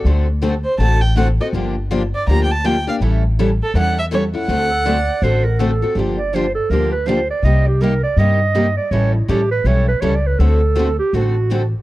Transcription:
X:1
M:4/4
L:1/16
Q:"Swing" 1/4=162
K:Gm
V:1 name="Violin"
z6 c2 a2 g2 ^f2 e2 | z6 d2 b3/2 g/2 a2 g2 f2 | z6 A2 ^f2 =e2 ^c2 f2- | ^f12 z4 |
z16 | z16 | z16 | z16 |]
V:2 name="Clarinet"
z16 | z16 | z16 | z2 A2 d4 c2 B2 A4 |
z2 d2 c2 A2 B2 =B2 c2 d2 | e2 G2 B2 d2 e6 d2 | ^c2 =E2 G2 =B2 c2 B2 (3c2 d2 B2 | A6 G2 ^F6 z2 |]
V:3 name="Steel-string acoustic guitar"
[D,A,C^FA]2 z2 [D,A,CFA] z3 [D,A,CFA]2 z2 [D,A,CFA] z [CFA]2 | [D,F,B,DG]2 z2 [D,F,B,DG] z3 [D,F,B,DG]2 z2 [D,F,B,DG] z [B,DG]2 | [=E,G,^C=EA]2 z2 [E,G,CEA] z3 [E,G,CEA]2 z2 [E,G,CEA] z [CEA]2 | [D,A,C^FA]2 z2 [D,A,CFA] z3 [D,A,CFA]2 z2 [D,A,CFA] z [CFA]2 |
[D,F,B,DG]2 z2 [D,F,B,DG] z3 [D,F,B,DG]2 z2 [D,F,B,DG] z3 | [C,G,B,EG]2 z2 [C,G,B,EG] z3 [C,G,B,EG]2 z2 [C,G,B,EG] z3 | [=E,G,^C=EA]2 z2 [E,G,CEA] z3 [E,G,CEA]2 z2 [E,G,CEA] z3 | [D,A,C^FA]2 z2 [D,A,CFA] z3 [D,A,CFA]2 z2 [D,A,CFA] z3 |]
V:4 name="Steel-string acoustic guitar"
[D,A,C^FA]2 z2 [D,A,CFA] z3 [D,A,CFA]2 z2 [D,A,CFA] z3 | [D,F,B,DG]2 z2 [D,F,B,DG] z3 [D,F,B,DG]2 z2 [D,F,B,DG] z3 | [=E,G,^C=EA]2 z2 [E,G,CEA] z3 [E,G,CEA]2 z2 [E,G,CEA] z3 | [D,A,C^FA]2 z2 [D,A,CFA] z3 [D,A,CFA]2 z2 [D,A,CFA] z3 |
[D,F,B,DG]2 z2 [D,F,B,DG] z3 [D,F,B,DG]2 z2 [D,F,B,DG] z3 | [C,G,B,EG]2 z2 [C,G,B,EG] z3 [C,G,B,EG]2 z2 [C,G,B,EG] z3 | [=E,G,^C=EA]2 z2 [E,G,CEA] z3 [E,G,CEA]2 z2 [E,G,CEA] z3 | [D,A,C^FA]2 z2 [D,A,CFA] z3 [D,A,CFA]2 z2 [D,A,CFA] z3 |]
V:5 name="Upright bass" clef=bass
D,,8 A,,,8 | G,,,8 D,,8 | A,,,8 =E,,8 | D,,8 A,,,8 |
G,,,8 D,,8 | C,,8 G,,8 | A,,,4 A,,,4 =B,,,4 ^C,,4 | D,,8 A,,,8 |]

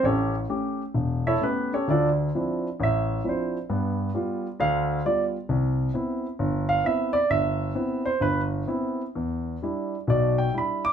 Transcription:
X:1
M:4/4
L:1/8
Q:"Swing" 1/4=132
K:C
V:1 name="Grand piano"
[^CGA^c] z4 [EAce] [B,B] [CGAc] | [DFAd] z3 e2 c z | z4 f2 d z | z4 z f e d |
e3 c B z3 | z4 d g b d' |]
V:2 name="Grand piano"
A,,,2 [A,^CG] z E,,,2 [A,CG] z | [D,,D,]2 [F,CDE] z A,,,2 [F,CDE] z | [G,,B,]2 [G,B,F] z [D,,D,]2 [G,B,F] z | C,,2 [B,CE] z G,,,2 [B,CE] z |
G,,,2 [B,CE] z G,,,2 [B,CE] z | E,,2 [G,DE] z [B,,,B,,]2 [G,DE] z |]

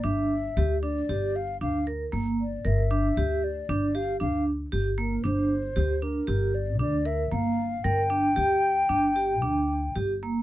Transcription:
X:1
M:5/4
L:1/8
Q:1/4=115
K:Gdor
V:1 name="Flute"
e3 d2 f f z2 d | e3 d2 f f z2 B | c3 B2 d d e f2 | g8 z2 |]
V:2 name="Vibraphone"
D2 G D G2 D B B,2 | B D G2 D G D2 G B, | D2 G D G2 D B B,2 | B D G2 D G D2 G B, |]
V:3 name="Upright bass" clef=bass
G,,,2 D,,2 G,,,2 D,,2 G,,,2 | G,,,2 D,,2 G,,,2 D,,2 G,,,2 | G,,,2 D,,2 G,,,2 D,,2 G,,,2 | G,,,2 D,,2 G,,,2 D,,2 G,,,2 |]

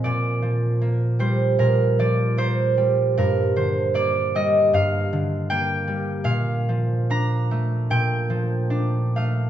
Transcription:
X:1
M:4/4
L:1/8
Q:1/4=77
K:Bb
V:1 name="Harp"
[Bdf]3 c B d c2 | B c d e f2 g2 | f2 b2 g3 f |]
V:2 name="Harp" clef=bass
[B,,F,] F, B, G, B,, F, B, G, | G,, D, B, G, G,, D, B, G, | B,, F, D A, B,, F, D A, |]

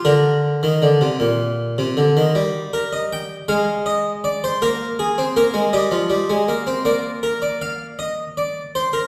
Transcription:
X:1
M:6/8
L:1/16
Q:3/8=53
K:Eb
V:1 name="Harpsichord"
B8- B2 z2 | z2 B e g2 f2 e2 d c | B2 A2 B2 e6 | d2 B d f2 e2 d2 c B |]
V:2 name="Harpsichord" clef=bass
D,3 E, D, C, B,,3 C, D, E, | G,6 A,6 | B,3 C B, A, G, F, G, A, B, C | B,12 |]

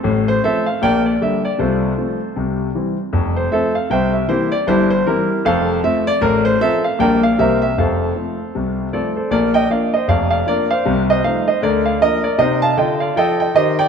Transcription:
X:1
M:4/4
L:1/8
Q:"Swing" 1/4=155
K:F
V:1 name="Grand piano"
z c [Ace] f [Bdg] d e d | [FAc]6 z2 | z c [Ace] f [ceg] e [EGc] d | [EGc] c [EGB]2 [Acf]2 e d |
B c [Ace] f [Bdg] f [Bce] e | [Acf]6 [Ad] [Ac] | [K:Bb] [Bd] [eg] [df] [ce] [df] [df] [Bd] [cf]- | [cf] [ce] [cf] [ce] [Bd] [df] [Be] [Bd] |
[ce] [fa] [eg] [df] [eg] [eg] [ce] [dg] |]
V:2 name="Grand piano" clef=bass
[A,,,A,,]2 [F,A,C]2 [B,,,B,,]2 [D,G,D]2 | [C,,C,]2 [F,A,C]2 [C,,C,]2 [E,G,C]2 | [F,,,F,,]2 [F,A,C]2 [C,,C,]2 [E,B,C]2 | [G,,,G,,]2 [E,G,C]2 [F,,,F,,]2 [F,A,C]2 |
[A,,,A,,]2 [F,CF]2 [B,,,B,,G,B,D]2 [C,,C,G,B,C]2 | [F,,,F,,]2 [F,A,C]2 [C,,C,]2 [F,A,C]2 | [K:Bb] [B,,,B,,]2 [F,B,D]2 [F,,,F,,]2 [F,B,D]2 | [C,,C,]2 [F,A,E]2 [D,,D,]2 [F,B,D]2 |
[C,E]2 [D,F]2 [F,A]2 [E,G]2 |]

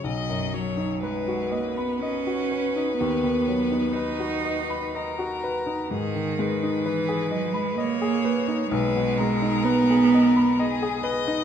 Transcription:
X:1
M:3/4
L:1/16
Q:1/4=63
K:B
V:1 name="Violin"
d2 c2 B4 B4- | B8 A4 | G2 B6 c4 | B2 A6 G2 d2 |]
V:2 name="Grand piano"
B,,, F,, F, D B F d b d F B D | D,, D, F, D B F d b d F B D | G,, D, G, D B G d b d G B D | B,,, B,, G, D B G d b d G B D |]
V:3 name="Cello"
F,4 G,2 A, B, C4 | B,4 D6 z2 | D,4 E,2 F, G, A,4 | G,4 B,6 z2 |]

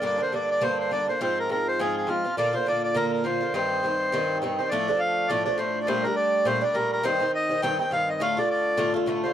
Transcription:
X:1
M:4/4
L:1/16
Q:"Swing" 1/4=206
K:Cm
V:1 name="Accordion"
d2 c2 d2 d2 c2 c2 d2 c2 | c2 B2 B2 c2 A2 A2 F4 | d2 c2 d2 d2 B2 B2 c4 | c12 z2 c2 |
[K:Dphr] d4 f4 d2 d2 c3 d | c2 B2 d4 c2 d2 B2 B2 | c4 e4 g2 g2 f2 e2 | f2 d2 d6 z4 c2 |]
V:2 name="Bouzouki"
[G,,D,B,D]2 [D,B,D]2 [G,,D,B,D]4 [G,,D,B,D]4 [G,,D,B,D]2 [D,B,D]2 | [A,,F,CF]4 [A,,F,CF]4 [A,,F,CF]4 [A,,F,CF]2 [F,CF]2 | [B,,D,B,F]2 [D,B,F]2 [B,,D,B,F]4 [B,,D,B,F]4 [B,,D,B,F]2 [D,B,F]2 | [G,,E,CE]4 [G,,E,CE]4 [G,,E,CE]4 [G,,E,CE]2 [E,CE]2 |
[K:Dphr] [A,,F,A,D]2 [F,A,D]6 [A,,F,A,D]2 [F,A,D]2 [A,,F,A,D]4 | [B,,G,A,D]2 [G,A,D]6 [B,,G,A,D]2 [G,A,D]2 [B,,G,A,D]4 | [G,,E,CE]2 [E,CE]4 [E,CE]2 [G,,E,CE]2 [E,CE]2 [G,,E,CE]4 | [A,,D,A,F]2 [D,A,F]6 [A,,D,A,F]2 [D,A,F]2 [A,,D,A,F]2 [D,A,F]2 |]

